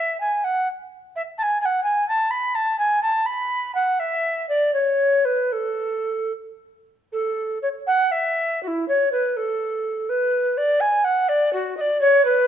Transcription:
0, 0, Header, 1, 2, 480
1, 0, Start_track
1, 0, Key_signature, 3, "major"
1, 0, Tempo, 473560
1, 1159, Time_signature, 6, 3, 24, 8
1, 4041, Tempo, 500835
1, 5001, Tempo, 530973
1, 6921, Tempo, 504202
1, 8361, Tempo, 483092
1, 12183, End_track
2, 0, Start_track
2, 0, Title_t, "Recorder"
2, 0, Program_c, 0, 74
2, 0, Note_on_c, 0, 76, 75
2, 196, Note_off_c, 0, 76, 0
2, 202, Note_on_c, 0, 80, 79
2, 444, Note_on_c, 0, 78, 76
2, 459, Note_off_c, 0, 80, 0
2, 684, Note_off_c, 0, 78, 0
2, 1169, Note_on_c, 0, 76, 67
2, 1230, Note_off_c, 0, 76, 0
2, 1393, Note_on_c, 0, 81, 71
2, 1442, Note_on_c, 0, 80, 77
2, 1453, Note_off_c, 0, 81, 0
2, 1621, Note_off_c, 0, 80, 0
2, 1628, Note_on_c, 0, 80, 69
2, 1671, Note_on_c, 0, 78, 75
2, 1682, Note_off_c, 0, 80, 0
2, 1850, Note_off_c, 0, 78, 0
2, 1857, Note_on_c, 0, 80, 77
2, 2091, Note_off_c, 0, 80, 0
2, 2107, Note_on_c, 0, 81, 83
2, 2334, Note_on_c, 0, 83, 79
2, 2349, Note_off_c, 0, 81, 0
2, 2579, Note_on_c, 0, 81, 85
2, 2594, Note_off_c, 0, 83, 0
2, 2814, Note_off_c, 0, 81, 0
2, 2820, Note_on_c, 0, 80, 78
2, 3055, Note_off_c, 0, 80, 0
2, 3061, Note_on_c, 0, 81, 83
2, 3301, Note_on_c, 0, 83, 94
2, 3316, Note_off_c, 0, 81, 0
2, 3791, Note_off_c, 0, 83, 0
2, 3796, Note_on_c, 0, 78, 72
2, 4045, Note_on_c, 0, 76, 76
2, 4060, Note_off_c, 0, 78, 0
2, 4513, Note_off_c, 0, 76, 0
2, 4518, Note_on_c, 0, 74, 76
2, 4753, Note_off_c, 0, 74, 0
2, 4757, Note_on_c, 0, 73, 76
2, 5234, Note_on_c, 0, 71, 63
2, 5247, Note_off_c, 0, 73, 0
2, 5481, Note_on_c, 0, 69, 63
2, 5494, Note_off_c, 0, 71, 0
2, 6204, Note_off_c, 0, 69, 0
2, 6929, Note_on_c, 0, 69, 73
2, 7367, Note_off_c, 0, 69, 0
2, 7403, Note_on_c, 0, 73, 62
2, 7460, Note_off_c, 0, 73, 0
2, 7637, Note_on_c, 0, 78, 86
2, 7871, Note_on_c, 0, 76, 71
2, 7886, Note_off_c, 0, 78, 0
2, 8356, Note_off_c, 0, 76, 0
2, 8361, Note_on_c, 0, 66, 67
2, 8406, Note_on_c, 0, 64, 72
2, 8416, Note_off_c, 0, 66, 0
2, 8604, Note_off_c, 0, 64, 0
2, 8613, Note_on_c, 0, 73, 71
2, 8842, Note_off_c, 0, 73, 0
2, 8848, Note_on_c, 0, 71, 77
2, 9093, Note_on_c, 0, 69, 79
2, 9108, Note_off_c, 0, 71, 0
2, 9815, Note_on_c, 0, 71, 83
2, 9830, Note_off_c, 0, 69, 0
2, 10293, Note_on_c, 0, 74, 89
2, 10308, Note_off_c, 0, 71, 0
2, 10522, Note_on_c, 0, 80, 102
2, 10537, Note_off_c, 0, 74, 0
2, 10760, Note_on_c, 0, 78, 84
2, 10775, Note_off_c, 0, 80, 0
2, 11001, Note_on_c, 0, 74, 91
2, 11016, Note_off_c, 0, 78, 0
2, 11237, Note_off_c, 0, 74, 0
2, 11243, Note_on_c, 0, 66, 91
2, 11477, Note_off_c, 0, 66, 0
2, 11483, Note_on_c, 0, 75, 87
2, 11519, Note_on_c, 0, 74, 94
2, 11529, Note_off_c, 0, 75, 0
2, 11713, Note_off_c, 0, 74, 0
2, 11720, Note_on_c, 0, 73, 102
2, 11953, Note_off_c, 0, 73, 0
2, 11959, Note_on_c, 0, 71, 108
2, 12183, Note_off_c, 0, 71, 0
2, 12183, End_track
0, 0, End_of_file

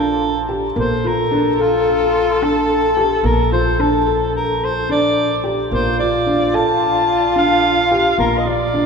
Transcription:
0, 0, Header, 1, 5, 480
1, 0, Start_track
1, 0, Key_signature, -2, "major"
1, 0, Tempo, 549451
1, 672, Time_signature, 9, 3, 24, 8
1, 7739, End_track
2, 0, Start_track
2, 0, Title_t, "Soprano saxophone"
2, 0, Program_c, 0, 64
2, 0, Note_on_c, 0, 69, 81
2, 498, Note_off_c, 0, 69, 0
2, 692, Note_on_c, 0, 72, 73
2, 933, Note_on_c, 0, 70, 80
2, 946, Note_off_c, 0, 72, 0
2, 1407, Note_on_c, 0, 65, 77
2, 1420, Note_off_c, 0, 70, 0
2, 2125, Note_on_c, 0, 69, 84
2, 2138, Note_off_c, 0, 65, 0
2, 2846, Note_on_c, 0, 70, 74
2, 2859, Note_off_c, 0, 69, 0
2, 3076, Note_off_c, 0, 70, 0
2, 3082, Note_on_c, 0, 72, 77
2, 3323, Note_on_c, 0, 69, 75
2, 3336, Note_off_c, 0, 72, 0
2, 3799, Note_off_c, 0, 69, 0
2, 3809, Note_on_c, 0, 70, 75
2, 4057, Note_on_c, 0, 72, 79
2, 4070, Note_off_c, 0, 70, 0
2, 4286, Note_off_c, 0, 72, 0
2, 4294, Note_on_c, 0, 74, 88
2, 4790, Note_off_c, 0, 74, 0
2, 4990, Note_on_c, 0, 72, 78
2, 5216, Note_off_c, 0, 72, 0
2, 5235, Note_on_c, 0, 74, 84
2, 5721, Note_on_c, 0, 81, 90
2, 5734, Note_off_c, 0, 74, 0
2, 6438, Note_off_c, 0, 81, 0
2, 6451, Note_on_c, 0, 77, 89
2, 7127, Note_off_c, 0, 77, 0
2, 7157, Note_on_c, 0, 70, 80
2, 7321, Note_on_c, 0, 75, 60
2, 7334, Note_off_c, 0, 70, 0
2, 7398, Note_on_c, 0, 74, 82
2, 7411, Note_off_c, 0, 75, 0
2, 7739, Note_off_c, 0, 74, 0
2, 7739, End_track
3, 0, Start_track
3, 0, Title_t, "French horn"
3, 0, Program_c, 1, 60
3, 0, Note_on_c, 1, 65, 94
3, 399, Note_off_c, 1, 65, 0
3, 671, Note_on_c, 1, 69, 105
3, 4721, Note_off_c, 1, 69, 0
3, 4989, Note_on_c, 1, 65, 98
3, 7739, Note_off_c, 1, 65, 0
3, 7739, End_track
4, 0, Start_track
4, 0, Title_t, "Felt piano"
4, 0, Program_c, 2, 0
4, 0, Note_on_c, 2, 62, 68
4, 246, Note_off_c, 2, 62, 0
4, 425, Note_on_c, 2, 67, 63
4, 577, Note_off_c, 2, 67, 0
4, 663, Note_on_c, 2, 58, 76
4, 815, Note_off_c, 2, 58, 0
4, 911, Note_on_c, 2, 65, 61
4, 1061, Note_off_c, 2, 65, 0
4, 1148, Note_on_c, 2, 62, 70
4, 1299, Note_off_c, 2, 62, 0
4, 1390, Note_on_c, 2, 69, 60
4, 1690, Note_off_c, 2, 69, 0
4, 2116, Note_on_c, 2, 62, 67
4, 2414, Note_off_c, 2, 62, 0
4, 2592, Note_on_c, 2, 67, 63
4, 2742, Note_off_c, 2, 67, 0
4, 2829, Note_on_c, 2, 58, 76
4, 2980, Note_off_c, 2, 58, 0
4, 3075, Note_on_c, 2, 65, 62
4, 3224, Note_off_c, 2, 65, 0
4, 3313, Note_on_c, 2, 62, 68
4, 3463, Note_off_c, 2, 62, 0
4, 3552, Note_on_c, 2, 69, 61
4, 3851, Note_off_c, 2, 69, 0
4, 4275, Note_on_c, 2, 62, 62
4, 4574, Note_off_c, 2, 62, 0
4, 4750, Note_on_c, 2, 67, 59
4, 4901, Note_off_c, 2, 67, 0
4, 4996, Note_on_c, 2, 58, 70
4, 5145, Note_off_c, 2, 58, 0
4, 5239, Note_on_c, 2, 65, 64
4, 5387, Note_off_c, 2, 65, 0
4, 5472, Note_on_c, 2, 62, 64
4, 5622, Note_off_c, 2, 62, 0
4, 5713, Note_on_c, 2, 69, 60
4, 6012, Note_off_c, 2, 69, 0
4, 6428, Note_on_c, 2, 62, 64
4, 6728, Note_off_c, 2, 62, 0
4, 6915, Note_on_c, 2, 67, 62
4, 7063, Note_off_c, 2, 67, 0
4, 7150, Note_on_c, 2, 58, 77
4, 7300, Note_off_c, 2, 58, 0
4, 7386, Note_on_c, 2, 65, 62
4, 7537, Note_off_c, 2, 65, 0
4, 7633, Note_on_c, 2, 62, 65
4, 7739, Note_off_c, 2, 62, 0
4, 7739, End_track
5, 0, Start_track
5, 0, Title_t, "Upright bass"
5, 0, Program_c, 3, 32
5, 0, Note_on_c, 3, 34, 60
5, 634, Note_off_c, 3, 34, 0
5, 666, Note_on_c, 3, 34, 65
5, 2797, Note_off_c, 3, 34, 0
5, 2824, Note_on_c, 3, 34, 68
5, 4955, Note_off_c, 3, 34, 0
5, 4991, Note_on_c, 3, 34, 59
5, 7116, Note_off_c, 3, 34, 0
5, 7147, Note_on_c, 3, 34, 66
5, 7739, Note_off_c, 3, 34, 0
5, 7739, End_track
0, 0, End_of_file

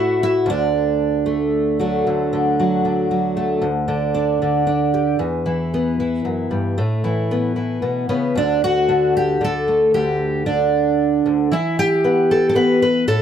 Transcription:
0, 0, Header, 1, 2, 480
1, 0, Start_track
1, 0, Key_signature, 2, "major"
1, 0, Tempo, 524934
1, 430, Time_signature, 3, 2, 24, 8
1, 12087, End_track
2, 0, Start_track
2, 0, Title_t, "Twelve-string acoustic guitar"
2, 0, Program_c, 0, 25
2, 0, Note_on_c, 0, 45, 85
2, 0, Note_on_c, 0, 64, 86
2, 0, Note_on_c, 0, 66, 96
2, 194, Note_off_c, 0, 64, 0
2, 211, Note_on_c, 0, 64, 94
2, 419, Note_on_c, 0, 38, 81
2, 429, Note_off_c, 0, 45, 0
2, 436, Note_off_c, 0, 66, 0
2, 441, Note_off_c, 0, 64, 0
2, 455, Note_on_c, 0, 62, 85
2, 1151, Note_on_c, 0, 57, 49
2, 1637, Note_off_c, 0, 57, 0
2, 1641, Note_on_c, 0, 54, 47
2, 1642, Note_off_c, 0, 62, 0
2, 1649, Note_on_c, 0, 57, 48
2, 1653, Note_on_c, 0, 62, 47
2, 1880, Note_off_c, 0, 38, 0
2, 1891, Note_on_c, 0, 38, 63
2, 2128, Note_on_c, 0, 50, 56
2, 2362, Note_off_c, 0, 54, 0
2, 2373, Note_on_c, 0, 54, 53
2, 2602, Note_off_c, 0, 50, 0
2, 2605, Note_on_c, 0, 50, 47
2, 2832, Note_off_c, 0, 54, 0
2, 2843, Note_on_c, 0, 54, 46
2, 3067, Note_off_c, 0, 57, 0
2, 3078, Note_on_c, 0, 57, 51
2, 3295, Note_off_c, 0, 38, 0
2, 3306, Note_on_c, 0, 38, 66
2, 3319, Note_off_c, 0, 57, 0
2, 3321, Note_off_c, 0, 54, 0
2, 3328, Note_off_c, 0, 62, 0
2, 3535, Note_off_c, 0, 50, 0
2, 3546, Note_on_c, 0, 50, 61
2, 3790, Note_on_c, 0, 62, 54
2, 4029, Note_off_c, 0, 50, 0
2, 4040, Note_on_c, 0, 50, 59
2, 4256, Note_off_c, 0, 62, 0
2, 4267, Note_on_c, 0, 62, 51
2, 4515, Note_on_c, 0, 67, 51
2, 4722, Note_off_c, 0, 62, 0
2, 4726, Note_off_c, 0, 67, 0
2, 4743, Note_off_c, 0, 38, 0
2, 4747, Note_on_c, 0, 40, 70
2, 4756, Note_off_c, 0, 50, 0
2, 4990, Note_on_c, 0, 52, 59
2, 5247, Note_on_c, 0, 59, 51
2, 5481, Note_off_c, 0, 52, 0
2, 5485, Note_on_c, 0, 52, 56
2, 5707, Note_off_c, 0, 40, 0
2, 5714, Note_on_c, 0, 42, 51
2, 5947, Note_off_c, 0, 42, 0
2, 5951, Note_on_c, 0, 43, 55
2, 6167, Note_off_c, 0, 52, 0
2, 6168, Note_off_c, 0, 59, 0
2, 6190, Note_off_c, 0, 43, 0
2, 6196, Note_on_c, 0, 45, 70
2, 6438, Note_on_c, 0, 52, 62
2, 6686, Note_on_c, 0, 59, 56
2, 6902, Note_off_c, 0, 52, 0
2, 6913, Note_on_c, 0, 52, 49
2, 7148, Note_off_c, 0, 45, 0
2, 7151, Note_on_c, 0, 47, 54
2, 7385, Note_off_c, 0, 59, 0
2, 7393, Note_off_c, 0, 47, 0
2, 7397, Note_on_c, 0, 49, 51
2, 7398, Note_on_c, 0, 59, 68
2, 7609, Note_off_c, 0, 52, 0
2, 7637, Note_off_c, 0, 59, 0
2, 7639, Note_off_c, 0, 49, 0
2, 7640, Note_on_c, 0, 38, 70
2, 7658, Note_on_c, 0, 62, 87
2, 7889, Note_off_c, 0, 62, 0
2, 7901, Note_on_c, 0, 66, 100
2, 8126, Note_on_c, 0, 50, 63
2, 8372, Note_off_c, 0, 66, 0
2, 8382, Note_on_c, 0, 67, 91
2, 8592, Note_off_c, 0, 50, 0
2, 8602, Note_on_c, 0, 50, 57
2, 8612, Note_off_c, 0, 67, 0
2, 8637, Note_on_c, 0, 69, 97
2, 8850, Note_on_c, 0, 57, 43
2, 9058, Note_off_c, 0, 57, 0
2, 9084, Note_off_c, 0, 38, 0
2, 9088, Note_off_c, 0, 69, 0
2, 9091, Note_on_c, 0, 67, 99
2, 9096, Note_on_c, 0, 38, 73
2, 9557, Note_off_c, 0, 50, 0
2, 9562, Note_off_c, 0, 67, 0
2, 9566, Note_on_c, 0, 62, 74
2, 9568, Note_on_c, 0, 50, 64
2, 10282, Note_off_c, 0, 38, 0
2, 10293, Note_on_c, 0, 38, 59
2, 10522, Note_off_c, 0, 62, 0
2, 10524, Note_off_c, 0, 50, 0
2, 10527, Note_off_c, 0, 38, 0
2, 10529, Note_on_c, 0, 52, 83
2, 10543, Note_on_c, 0, 64, 93
2, 10771, Note_off_c, 0, 64, 0
2, 10781, Note_on_c, 0, 67, 105
2, 11012, Note_on_c, 0, 59, 62
2, 11259, Note_on_c, 0, 69, 92
2, 11414, Note_off_c, 0, 69, 0
2, 11425, Note_on_c, 0, 69, 86
2, 11466, Note_off_c, 0, 59, 0
2, 11477, Note_on_c, 0, 59, 66
2, 11480, Note_off_c, 0, 69, 0
2, 11485, Note_on_c, 0, 71, 95
2, 11715, Note_off_c, 0, 71, 0
2, 11725, Note_off_c, 0, 67, 0
2, 11726, Note_on_c, 0, 71, 96
2, 11926, Note_off_c, 0, 59, 0
2, 11930, Note_off_c, 0, 52, 0
2, 11955, Note_off_c, 0, 71, 0
2, 11956, Note_on_c, 0, 45, 77
2, 11959, Note_on_c, 0, 69, 106
2, 12087, Note_off_c, 0, 45, 0
2, 12087, Note_off_c, 0, 69, 0
2, 12087, End_track
0, 0, End_of_file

